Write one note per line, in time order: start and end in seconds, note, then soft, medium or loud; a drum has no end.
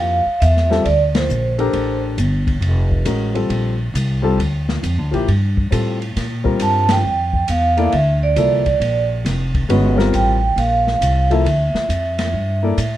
0.00 0.24 F2 medium
0.00 0.20 F3 medium
0.00 0.20 A#3 soft
0.00 0.21 E4 soft
0.00 0.21 G4 medium
0.00 0.39 F5 medium
0.26 muted upright bass stroke soft
0.40 0.84 E2 medium
0.40 0.82 E5 medium
0.40 hi-hat pedal medium
0.40 ride medium
0.57 snare soft
0.70 0.84 G3 medium
0.70 0.84 C4 medium
0.70 0.84 F4 medium
0.70 0.85 A4 medium
0.70 snare soft
0.84 1.28 D2 medium
0.84 0.98 D5 medium
0.84 ride medium
1.15 2.00 C5 medium
1.15 snare medium
1.15 ride medium
1.29 1.72 A#1 medium
1.29 hi-hat pedal medium
1.58 2.15 D4 medium
1.58 2.15 G4 medium
1.58 2.15 A4 medium
1.58 2.16 A#4 medium
1.58 ride soft
1.73 2.17 A1 medium
1.73 ride medium
2.18 2.60 G1 medium
2.18 hi-hat pedal medium
2.18 ride medium
2.47 kick medium
2.47 ride soft
2.61 3.04 F1 medium
2.61 ride medium
2.91 kick soft
3.05 3.49 A1 medium
3.05 3.32 G#3 medium
3.05 3.32 C#4 soft
3.05 3.32 F#4 soft
3.05 3.33 A#4 medium
3.05 hi-hat pedal soft
3.05 ride medium
3.34 3.73 G3 medium
3.34 3.74 C4 soft
3.34 3.74 F4 soft
3.34 3.74 A4 medium
3.34 ride soft
3.50 3.93 A#1 medium
3.50 ride medium
3.94 4.37 C2 medium
3.94 hi-hat pedal medium
3.94 ride medium
4.22 4.37 G3 medium
4.22 4.37 C4 medium
4.22 4.37 F4 medium
4.22 4.38 A4 medium
4.38 4.81 D2 medium
4.38 ride medium
4.69 snare medium
4.83 4.98 F2 medium
4.83 hi-hat pedal medium
4.83 ride medium
4.98 5.12 D2 soft
5.11 5.26 A#1 medium
5.11 5.25 F3 medium
5.11 5.26 A#3 medium
5.11 5.26 E4 medium
5.11 5.26 G4 medium
5.11 ride soft
5.28 5.70 G2 medium
5.28 ride medium
5.57 kick medium
5.71 6.14 A2 medium
5.71 5.97 G3 soft
5.71 5.98 C4 soft
5.71 5.98 F4 soft
5.71 5.98 A4 medium
5.71 hi-hat pedal medium
5.71 ride medium
6.02 ride soft
6.16 6.59 A#2 medium
6.16 snare soft
6.16 ride medium
6.44 7.00 G3 medium
6.44 7.00 C4 medium
6.44 7.01 F4 medium
6.44 7.01 A#4 medium
6.44 kick medium
6.60 7.03 G2 medium
6.60 6.88 A5 medium
6.60 hi-hat pedal medium
6.60 ride medium
6.89 7.45 G5 medium
6.89 snare medium
6.89 ride medium
7.04 7.47 F2 medium
7.33 kick soft
7.48 7.91 E2 medium
7.48 7.90 F5 medium
7.48 hi-hat pedal medium
7.48 ride medium
7.77 7.91 A#3 medium
7.77 7.91 E4 medium
7.77 7.91 A4 medium
7.77 7.91 D5 medium
7.77 ride soft
7.92 8.35 D2 medium
7.92 8.06 E5 medium
7.92 ride medium
8.23 9.07 D5 medium
8.36 8.79 C2 medium
8.36 8.63 F3 medium
8.36 8.63 A#3 medium
8.36 8.63 E4 medium
8.36 8.63 A4 medium
8.36 hi-hat pedal medium
8.36 ride medium
8.66 kick soft
8.66 ride soft
8.80 9.23 A#1 medium
8.80 ride medium
9.25 9.67 F1 medium
9.25 snare soft
9.25 hi-hat pedal soft
9.25 ride medium
9.54 kick medium
9.54 ride soft
9.69 10.12 G1 medium
9.69 9.95 G#3 medium
9.69 9.95 C#4 medium
9.69 9.96 F#4 medium
9.69 9.96 B4 medium
9.69 ride medium
9.96 10.35 G3 medium
9.96 10.36 C4 medium
9.96 10.36 F4 medium
9.96 10.36 A#4 medium
9.96 snare soft
10.13 10.56 A1 medium
10.13 10.59 G5 medium
10.13 hi-hat pedal soft
10.13 ride medium
10.56 10.99 A#1 medium
10.56 11.27 F5 medium
10.56 ride medium
10.87 snare soft
11.01 11.44 C2 medium
11.01 hi-hat pedal medium
11.01 ride medium
11.30 11.44 F3 medium
11.30 11.44 A#3 medium
11.30 11.44 E4 medium
11.30 11.44 A4 medium
11.30 12.97 E5 medium
11.30 ride soft
11.45 11.72 D2 medium
11.45 ride medium
11.74 muted upright bass stroke soft
11.74 snare soft
11.89 12.32 F2 medium
11.89 hi-hat pedal medium
11.89 ride medium
12.19 snare soft
12.19 ride medium
12.33 12.76 G2 medium
12.63 12.76 A#3 medium
12.63 12.76 E4 medium
12.63 12.77 A4 medium
12.63 12.77 D5 medium
12.77 12.97 A2 medium
12.77 hi-hat pedal medium
12.77 ride medium